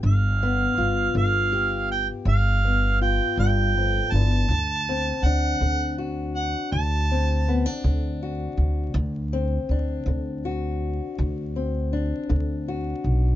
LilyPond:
<<
  \new Staff \with { instrumentName = "Harmonica" } { \time 12/8 \key d \mixolydian \tempo 4. = 54 f''4. f''4 g''8 f''4 g''8 g''4 a''8~ | a''4 fis''4 r8 fis''8 a''4. r4. | r1. | }
  \new Staff \with { instrumentName = "Steel-string acoustic guitar" } { \time 12/8 \key d \mixolydian << { r8 b8 f'4 g'4. b8 f'2 | r8 c'8 d'4 fis'4. c'8 b16 d'8. fis'4 | r8 c'8 d'4 fis'4. c'8 d'4 fis'4 | } \\ { g,4 r8 d4 r8 g,4 r8 g,8 f,8 e,8 | d,4 r8 d4 r8 d,4 r8 d4 r8 | d,4 r8 d4 r8 d,4 r8 d4 r8 | } >> }
  \new Staff \with { instrumentName = "Upright bass" } { \clef bass \time 12/8 \key d \mixolydian g,,4 g,,8 g,,4. g,,4. g,,4 g,,8 | d,4 d,8 d,4. d,4. d,4 d,8 | d,4 d,8 d,4. d,4. d,4 b,,8 | }
>>